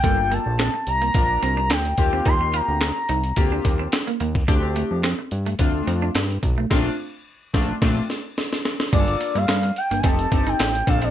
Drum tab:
CC |----------------|----------------|----------------|x-------x-------|
HH |x-x-x-xxx-x-xxx-|x-x-x-xxx-x-xxx-|x-x-x-xxx-x-xxx-|----------------|
CP |----x-------x---|----x-------x---|----x-------x---|----------------|
SD |----o-------o---|----o-------o---|----o-------o---|o-----o-o-o-oooo|
BD |o-------o-----o-|o-------o-o----o|o-------o-----o-|o-----o-o-------|

CC |x---------------|
HH |xxxxxxxxxxxxxxxx|
CP |----x-------x---|
SD |----o-------o---|
BD |o-------o-o---o-|